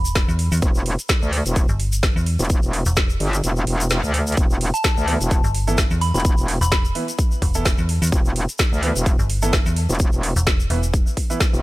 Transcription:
Already playing: E1 B5
0.05 closed hi-hat, shaker
0.15 kick, snare, closed hi-hat, shaker
0.28 E2, shaker
0.39 open hi-hat
0.52 E2, closed hi-hat, shaker
0.57 closed hi-hat
0.62 E1, kick, closed hi-hat, shaker
0.75 shaker
0.86 open hi-hat
0.99 closed hi-hat, shaker
1.09 kick, snare, closed hi-hat, shaker
1.22 D2, shaker
1.33 open hi-hat
1.46 E1, closed hi-hat, shaker
1.56 kick, closed hi-hat, shaker
1.69 G1, shaker
1.80 open hi-hat
1.92 closed hi-hat, shaker
2.03 kick, snare, closed hi-hat, shaker
2.16 E2, shaker
2.26 open hi-hat
2.39 E1, closed hi-hat, shaker
2.45 closed hi-hat
2.50 kick, closed hi-hat, shaker
2.63 E1, shaker
2.73 open hi-hat
2.86 E1, closed hi-hat, shaker
2.96 kick, snare, closed hi-hat, shaker
3.10 shaker
3.20 G1, open hi-hat
3.33 closed hi-hat, shaker
3.44 E1, closed hi-hat, shaker
3.57 shaker
3.67 E1, open hi-hat
3.80 closed hi-hat, shaker
3.90 snare, closed hi-hat, shaker
4.03 D2, shaker
4.14 open hi-hat
4.27 closed hi-hat, shaker
4.32 closed hi-hat
4.37 E1, kick, closed hi-hat, shaker
4.50 shaker
4.61 open hi-hat
4.74 A5, closed hi-hat, shaker
4.84 kick, snare, closed hi-hat, shaker
4.97 D2, shaker
5.08 E3 B3 E4 B4, open hi-hat
5.21 E1, closed hi-hat, shaker
5.31 kick, closed hi-hat, shaker
5.44 G1, shaker
5.54 open hi-hat
5.67 E3 B3 E4 A4, closed hi-hat, shaker
5.78 kick, snare, closed hi-hat, shaker
5.91 E2, shaker
6.01 B5, open hi-hat
6.14 E1 B5, closed hi-hat, shaker
6.20 closed hi-hat
6.25 kick, closed hi-hat, shaker
6.38 E1, shaker
6.48 open hi-hat
6.61 E1 B5, closed hi-hat, shaker
6.72 B5, kick, snare, closed hi-hat, shaker
6.85 shaker
6.95 E3 B3 E4 B4, open hi-hat
7.08 closed hi-hat, shaker
7.19 kick, closed hi-hat, shaker
7.31 shaker
7.42 E1, kick, open hi-hat
7.54 E3 B3 E4 A4, closed hi-hat, shaker
7.65 kick, snare, closed hi-hat, shaker
7.78 E2, shaker
7.89 open hi-hat
8.02 E2, closed hi-hat, shaker
8.07 closed hi-hat
8.12 E1, kick, shaker
8.25 shaker
8.36 open hi-hat
8.49 closed hi-hat, shaker
8.59 kick, snare, closed hi-hat, shaker
8.72 D2, shaker
8.83 E3 B3 E4 B4, open hi-hat
8.96 E1, closed hi-hat, shaker
9.06 kick, closed hi-hat, shaker
9.19 G1, shaker
9.30 open hi-hat
9.42 E3 B3 E4 A4, closed hi-hat, shaker
9.53 kick, snare, closed hi-hat, shaker
9.66 E2, shaker
9.76 open hi-hat
9.89 E1, closed hi-hat, shaker
9.95 closed hi-hat
9.99 kick, closed hi-hat, shaker
10.13 E1, shaker
10.23 open hi-hat
10.36 E1, closed hi-hat, shaker
10.47 kick, snare, closed hi-hat, shaker
10.60 shaker
10.70 E1 E3 B3 E4 B4, open hi-hat
10.83 closed hi-hat, shaker
10.94 kick, closed hi-hat, shaker
11.07 shaker
11.17 kick, open hi-hat
11.30 E3 B3 E4 B4, closed hi-hat, shaker
11.40 kick, snare, closed hi-hat, shaker
11.53 E1, shaker

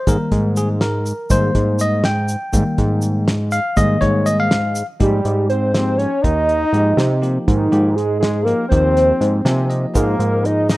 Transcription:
0.07 G#2 D#3 G3 A#3 A#4, kick, closed hi-hat, shaker
0.32 G#2, kick, snare, closed hi-hat
0.56 G#4, closed hi-hat, shaker
0.81 A#4, snare, closed hi-hat
1.06 closed hi-hat, shaker
1.30 G#2 D#3 G3 A#3 C5, kick, closed hi-hat, shaker
1.55 G#2, kick, snare, closed hi-hat
1.79 D#5, closed hi-hat, shaker
2.04 G5, snare, closed hi-hat
2.28 closed hi-hat, shaker
2.53 G#2 D#3 G3 A#3, kick, closed hi-hat, shaker
2.78 G#2, kick, snare, closed hi-hat
3.02 closed hi-hat, shaker
3.28 snare, closed hi-hat
3.51 F5, closed hi-hat, shaker
3.77 G#2 D#3 G3 A#3 D#5, kick, closed hi-hat, shaker
4.01 G#2 C#5, kick, snare, closed hi-hat
4.26 D#5, closed hi-hat, shaker
4.40 F5
4.51 snare, closed hi-hat
4.75 closed hi-hat, shaker
5.00 G#2 F3 G3 A#3 D#4 G4, kick, closed hi-hat
5.25 G#2, closed hi-hat
5.49 C4 C5, closed hi-hat
5.74 F3 A#3 C4 D#4 G4 C5, snare, closed hi-hat
5.98 C#4 C#5, closed hi-hat
6.23 D#2 D#4 D#5, kick, closed hi-hat
6.49 closed hi-hat
6.73 G#2 F3 A#3 D#4 G4, closed hi-hat
6.97 C3, snare, closed hi-hat
7.21 F3 A#3 D#4 G4, closed hi-hat
7.46 G#2 D#3 D#4, kick, closed hi-hat
7.72 G#2 F3 A#3 D#4 G4, closed hi-hat
7.96 G#3 G#4, closed hi-hat
8.20 G#3 G#4, snare, closed hi-hat
8.43 F3 A#3 D#4 G4 A#4
8.48 closed hi-hat
8.69 D#2 F3 A#3 C4 D#4 G4 C5, kick, closed hi-hat
8.97 snare, closed hi-hat
9.21 G#2, snare, closed hi-hat
9.45 C3 F3 A#3 D#4 G4 G#5, snare, closed hi-hat
9.70 D#5, closed hi-hat
9.94 G#2 F3 A#3 D#4 G#4 A#4, kick, closed hi-hat, shaker
10.19 G#2, closed hi-hat
10.45 D#4 D#5, closed hi-hat
10.69 F3 A#3 D#4 G#4 D#5, snare, closed hi-hat, shaker

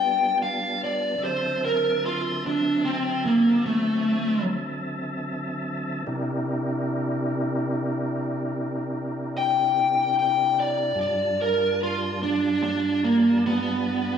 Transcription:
Already playing: G3 B3 D4 F4 G5 A5
0.42 F5
0.84 D5
1.18 D3 F#3 C4 E5 A5
1.25 C5
1.65 A#4
2.05 F4
2.46 D4
2.85 C4
3.25 A#3
3.66 A3
6.07 C3 D4 E4 G4 A#4
9.38 G5
10.19 G5
10.60 D5
10.95 G2 G3 D4 F4 A5
11.01 D5
11.42 A#4
11.83 F4
12.23 D4
12.63 D4
13.04 A#3
13.46 B3

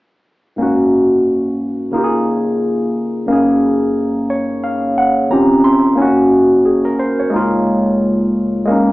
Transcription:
0.56 G#2 A#3 C#4
0.61 D#4 F#4
1.91 C#3 A#3 D#4
1.96 F4 G4
2.04 G#4
3.26 F#2 A#3 C#4
3.31 D#4 G#4
4.30 C#5
4.64 F5
4.98 F#5
5.30 D#3 C4 C#4 F4 G4 A#5
5.64 C6
5.95 A#3 C#4
5.99 G#1 D#4 F#4
6.66 G#4
6.85 A#4
6.99 C5
7.20 C#5
7.30 G#3 A#3 D#4
7.35 C#2 F4
8.65 G#3 A#3
8.69 F#1 C#4 D#4

